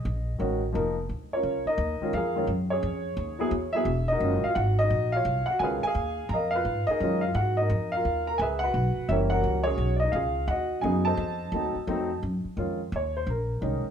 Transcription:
Already playing: G#4 C5 D#5
0.05 A#1
0.38 A1 D#3 G#3 C#4 F#4
0.73 F1 F3 A#3 D#4 A#4
1.09 D2
1.33 C#4 F4 A#4 C#5
1.43 C#2
1.66 D#4 A#4 D#5, muted upright bass stroke
1.78 D#2
2.01 D#3 G#3 C#4 F4, muted upright bass stroke
2.13 F2 F4 G#4 F5
2.17 A#4
2.35 D#3 G#3 C#4 F4
2.47 F#2
2.70 C#4 G#4 C#5
2.83 F2
3.17 D#2
3.39 F#3 B3 E4 G#4
3.51 E2
3.73 F#3 B3 E4 G#4 E5
3.85 E1
4.08 D#4 D#5
4.12 F#4 A#4
4.20 F#1 D#3 G#3 C#4 F4
4.44 F5, muted upright bass stroke
4.49 F4
4.55 G#1 F#5
4.59 F#4
4.79 D#5
4.83 D#4 F#4
4.90 A#1
5.12 F4 C#5 F5
5.25 C2
5.46 F#5, muted upright bass stroke
5.51 F#4
5.59 C#2 D#3 G#3 C#4 F4 B4 G#5
5.63 G#4 F5
5.83 G#4 G#5, muted upright bass stroke
5.87 F5
5.95 D#2
6.29 F2 A#5
6.33 A#4 D#5 F5
6.51 F5
6.55 F4 B4
6.65 G#2
6.87 D#4 G#4 A#4 D#5, muted upright bass stroke
7.00 F#2 D#3 G#3 C#4 F4
7.21 F5
7.26 F4
7.34 G#2 F#5
7.39 F#4
7.57 D#5
7.61 D#4 A#4
7.70 F2
7.92 F5
7.96 F4 A#4
8.05 D#2
8.27 A#4 A#5
8.38 C#2 B4 E5 G#5
8.42 G#4
8.59 F#5
8.64 F#4 B4
8.74 B1
8.96 muted upright bass stroke
9.09 F#1 E3 G3 A#3 C#4 E4 G4 A#4 E5
9.30 F#4 A#4 F#5
9.44 C#2
9.63 C#4 F#4 G#4 C#5
9.78 B1
9.96 D5 D#5
10.04 D#4
10.12 C#2 F4 G#4 F5
10.48 D#2 F#4 D#5 F#5
10.81 F#2 C#3 F#3 B3 D#4 G#4 G#5
11.05 A4 C5 D#5 A5
11.17 F2
11.52 D#2 F#3 A3 C4 D#4
11.75 muted upright bass stroke
11.87 F2 F#3 A3 C4 D#4
12.23 F#2
12.44 muted upright bass stroke
12.56 F2 D#3 G#3 C#4 F4
12.92 D#2 C#5
13.17 C5
13.27 A#1 A#4
13.61 C2 D#3 G#3 C#4 D#4
13.84 muted upright bass stroke

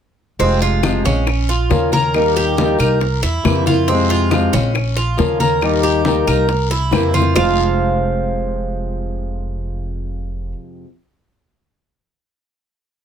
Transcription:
0.39 F1 C3 F3 G#3 C4 F4, high bongo, high conga, long guiro
0.62 F4, high bongo, high conga
0.83 C3 F3 G#3 C4 F4, high bongo, high conga, short guiro, claves
1.04 A#1 G#3 C4 C#4 F4, high conga, short guiro
1.26 muted steel-string acoustic guitar stroke, high bongo, high conga, long guiro, claves
1.49 F4, high bongo, high conga
1.69 D#2 F3 A#3 C#4 F4, high bongo, low bongo, high conga, short guiro
1.92 A#3 C#4 F4 A#4, high bongo, high conga, short guiro
2.14 D#3 G3 A#3 D#4 G4, high bongo, high conga, long guiro, claves
2.36 G4, high bongo, high conga
2.57 D#3 G3 A#3 D#4 G4, high bongo, high conga, short guiro
2.79 C2 A#3 D#4 G4 A#4, short guiro, claves
3.01 muted steel-string acoustic guitar stroke, high bongo, high conga, long guiro
3.23 E2 E4, high bongo, high conga
3.44 F2 C3 E3 A#3 C4 E4, high bongo, low bongo, high conga, short guiro, claves
3.66 A#3 C4 E4 F4, high bongo, high conga, short guiro
3.88 C3 F3 G#3 C4 F4, high bongo, high conga, long guiro
4.10 F4, high bongo, high conga
4.31 C3 F3 G#3 C4 F4, high bongo, high conga, short guiro, claves
4.53 A#1 G#3 C4 C#4 F4, high conga, short guiro
4.74 muted steel-string acoustic guitar stroke, high bongo, high conga, long guiro, claves
4.97 F4, high bongo, high conga
5.17 D#2 F3 A#3 C#4 F4, high bongo, low bongo, high conga, short guiro
5.40 A#3 C#4 F4 A#4, high bongo, high conga, short guiro
5.61 D#3 G3 A#3 D#4 G4, high bongo, high conga, long guiro, claves
5.83 G4, high bongo, high conga
6.05 D#3 G3 A#3 D#4 G4, high bongo, high conga, short guiro
6.27 C2 A#3 D#4 G4 A#4, short guiro, claves
6.49 muted steel-string acoustic guitar stroke, high bongo, high conga, long guiro
6.70 E4, high bongo, high conga
6.91 F2 C3 E3 A#3 C4 E4, high bongo, high conga, short guiro, claves
7.13 A#3 C4 E4 F4, high conga, short guiro
7.22 low bongo
7.33 F1 F2 C3 F3 G#3 C4 F4 C5 F5, low bongo, low conga, long guiro, claves

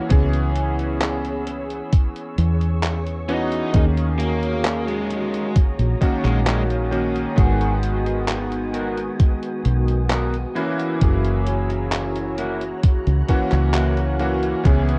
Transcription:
Already playing: E3 A#3 C#4 F#4 C#5
0.09 C#2 E3 B3 C#4 G#4 B5 E6, kick, closed hi-hat
0.33 closed hi-hat
0.56 closed hi-hat
0.79 closed hi-hat
1.01 clap, closed hi-hat
1.25 closed hi-hat
1.47 closed hi-hat
1.70 closed hi-hat
1.93 C#6, kick, closed hi-hat
2.16 closed hi-hat
2.38 E2, closed hi-hat
2.61 closed hi-hat
2.83 clap, closed hi-hat
3.07 closed hi-hat
3.28 E3 B3 C#4 D#4 F#4, closed hi-hat
3.52 closed hi-hat
3.73 D#2 D#3 A#3 C#4 F#4 G#4 C#5 A#5 D#6, kick, closed hi-hat
3.97 closed hi-hat
4.19 A#3, closed hi-hat
4.43 closed hi-hat
4.65 clap, closed hi-hat
4.88 G#3, closed hi-hat
5.11 closed hi-hat
5.34 closed hi-hat
5.56 kick, closed hi-hat
5.79 A#1, closed hi-hat
6.01 D#3 A#3 C#4 F#4, kick, closed hi-hat
6.24 A#1 G#3, clap, closed hi-hat
6.47 G#3, clap, closed hi-hat
6.70 closed hi-hat
6.91 D#3 A#3 C#4 F#4, closed hi-hat
7.16 closed hi-hat
7.36 G#1 D#3 G#3 B3 F#4 G#4 G#5, kick, closed hi-hat
7.61 closed hi-hat
7.83 closed hi-hat
8.06 muted clean electric guitar stroke, closed hi-hat
8.28 muted clean electric guitar stroke, clap, closed hi-hat
8.52 muted clean electric guitar stroke, closed hi-hat
8.73 B3 F#4 A#4, closed hi-hat
8.97 closed hi-hat
9.19 muted clean electric guitar stroke, kick, closed hi-hat
9.43 closed hi-hat
9.64 B1, muted clean electric guitar stroke, closed hi-hat
9.88 closed hi-hat
10.09 B3 F#4 A#4, clap, closed hi-hat
10.34 closed hi-hat
10.55 E3 A#3 C#4 E4 F#4 C#5 A#5 E6, closed hi-hat
10.80 closed hi-hat
11.00 F#1 E3 A#3 C#4 G#4, kick, closed hi-hat
11.25 closed hi-hat
11.47 closed hi-hat
11.70 muted clean electric guitar stroke, closed hi-hat
11.92 clap, closed hi-hat
12.15 muted clean electric guitar stroke, closed hi-hat
12.38 A#3 E4 F#4 F#6, closed hi-hat
12.61 closed hi-hat
12.83 muted clean electric guitar stroke, kick, closed hi-hat
13.07 C#2, closed hi-hat
13.28 E3 A#3 C#4 F#4, muted clean electric guitar stroke, kick, closed hi-hat
13.52 C#2, clap, closed hi-hat
13.74 A#3 E4 F#4, clap, closed hi-hat
13.97 closed hi-hat
14.19 E3 A#3 C#4 F#4, muted clean electric guitar stroke, closed hi-hat
14.42 muted clean electric guitar stroke, closed hi-hat
14.64 C#2 E3 B3 C#4 E4 G#4 C#5 B5 E6, kick, closed hi-hat
14.89 closed hi-hat

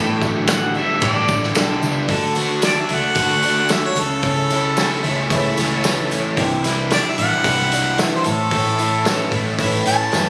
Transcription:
Already playing: A1 A2 D3 G3 A3 D4 E4 G4
0.22 D3 G3 D4 E4, kick, tambourine
0.47 D3 G3 D4 E4 F#5, snare, ride bell, tambourine
0.74 D4 E4 E5, tambourine
0.78 G3
1.00 A1 A2 D3 G3 D4 E4 D5, kick, ride bell, tambourine
1.28 A1 D3 G3 D4 E4, kick, tambourine
1.43 snare
1.55 B1 D3 G3 D4 E4, snare, ride bell, tambourine
1.82 C#2 G3 D4 E4, tambourine
2.08 D2 D3 A3 D4 F#4, kick, open hi-hat, tambourine
2.12 A3 F#4 A4
2.34 A3 D4 F#4, open hi-hat, tambourine
2.61 D3 A3 D4 F#4 D5, snare, open hi-hat, tambourine
2.80 E5
2.87 C#2 A3 D4 F#4, open hi-hat, tambourine
2.93 F#5
3.15 D2 D3 A3 D4 F#4, kick, open hi-hat, tambourine
3.42 A3 D4 F#4, open hi-hat, tambourine
3.69 D3 A3 D4 F#4 E5, snare, open hi-hat, tambourine
3.85 C#5
3.95 C#2 C#3 A3 C#4 E4, open hi-hat, tambourine
4.00 C#4 A4
4.22 C#3 E3 A3 C#4 E4, kick, open hi-hat, tambourine
4.50 A3 C#4 E4, open hi-hat, tambourine
4.77 E3 A3 C#4, snare, open hi-hat, tambourine
4.81 E4
5.03 C#2 A3 C#4 E4, open hi-hat, tambourine
5.30 C#2 C#3 E3 A3 C#4 E4, kick, open hi-hat, tambourine
5.57 C#2 A3 C#4 E4, snare, open hi-hat, tambourine
5.84 E3 A3 C#4 E4, snare, open hi-hat, tambourine
6.10 A3 C#4 E4, open hi-hat, tambourine
6.36 C2 C3 E3 G3 C4 D4 E4 G4, kick, open hi-hat, tambourine
6.41 C3
6.64 G3 D4 E4, snare, open hi-hat, tambourine
6.90 E3 G3 D4 D5, snare, open hi-hat, tambourine
6.95 E4
7.08 E5
7.17 A1 G3 D4 E4 F#5, open hi-hat, tambourine
7.43 C2 C3 E3 G3 D4 E4, kick, open hi-hat, tambourine
7.69 D4 E4, open hi-hat, tambourine
7.73 G3
7.96 E3 G3 D4 E4, snare, open hi-hat, tambourine
8.00 E3 E5
8.15 C5
8.23 A1 A2 A3 C#4 E4 A4, open hi-hat, tambourine
8.27 A3 A4
8.51 A2 E3 A3 C#4 E4, kick, open hi-hat, tambourine
8.76 A3 C#4 E4, open hi-hat, tambourine
9.04 E3 A3 C#4 E4, snare, open hi-hat, tambourine
9.31 A1 C#4 E4, kick, open hi-hat, tambourine
9.35 A3
9.58 A1 A2 E3 A3 C#4 E4, kick, open hi-hat, tambourine
9.84 A1 A3 C#4 E4 A5, open hi-hat, tambourine
10.12 F#2 E3 A3 C#4, snare, open hi-hat, tambourine
10.16 E4

